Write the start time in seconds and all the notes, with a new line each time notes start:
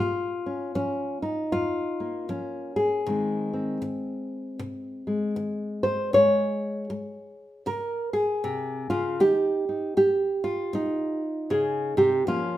0.00 A#2 F4
0.46 C#4
0.75 F3 C#4
1.22 D#4
1.52 F2 F4
2.00 A#3
2.29 F3 C#4
2.76 G#4
3.06 C3 D#3 G#3 C4
3.53 C4
3.82 D#3
4.59 C3
5.07 G#3
5.36 D#3
5.83 C5
6.13 C#3 G#3 G#4 C#5
6.90 G#3
7.66 C#3 A#4
8.13 G#4
8.44 C3
8.90 C#3 F4
9.20 D#3 D#4 G4
9.69 D#4
9.97 D#4 G4
10.44 F4
10.73 A#2 D#4
11.50 C#3 G#4
11.97 C3 G4
12.27 A#2 F3 A#3 C#4 F4